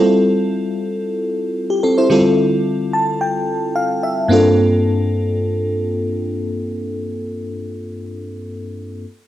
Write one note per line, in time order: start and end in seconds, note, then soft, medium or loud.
0.00 2.06 G3 medium
0.00 1.52 C4 medium
0.00 1.52 E4 medium
0.00 1.53 F4 medium
0.00 1.53 A4 medium
1.70 1.82 G4 medium
1.83 1.97 C4 medium
1.83 1.97 A4 medium
1.98 2.10 E4 medium
1.98 2.24 C5 medium
2.09 4.26 D3 medium
2.09 4.26 G3 medium
2.09 4.27 C4 medium
2.09 4.27 E4 medium
2.09 4.27 F4 medium
2.09 4.27 A4 medium
2.93 3.19 A5 medium
3.21 3.72 G5 medium
3.76 4.01 F5 medium
4.03 4.29 E5 medium
4.28 7.96 G2 medium
4.28 7.96 A#3 medium
4.28 7.97 C4 medium
4.28 7.97 D4 medium
4.28 7.98 F4 medium
4.33 7.98 A4 medium